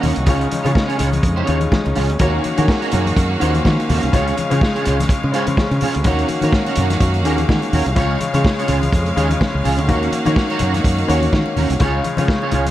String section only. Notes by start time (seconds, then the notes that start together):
Already playing: D#3 A#3 C#4 D#4 F#4
0.27 G#3
2.20 D#3 A#3 C#4 F#4 F5
4.14 G#3
6.05 D#3 A#3 F#4 F5
7.96 G#3 C#4
9.88 D#3 A#3 F#4
11.81 G#3 C#4